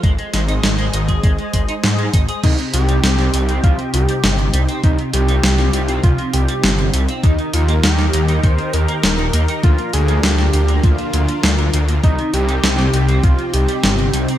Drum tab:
CC |----------------|x---------------|----------------|----------------|
HH |xxxxxxxxxxxxxxxx|xxxxxxxxxxxxxxxx|xxxxxxxxxxxxxxxx|xxxxxxxxxxxxxxxx|
SD |--o-o-------o---|----oo------o---|----oo------o---|----oo------o---|
BD |o------oo-o---o-|o-------o-------|o-------o-------|o-------o-------|

CC |----------------|----------------|
HH |xxxxxxxxxxxxxxxx|xxxxxxxxxxxxxxxx|
SD |----oo------o---|----oo------o---|
BD |o-------o-------|o-------o-------|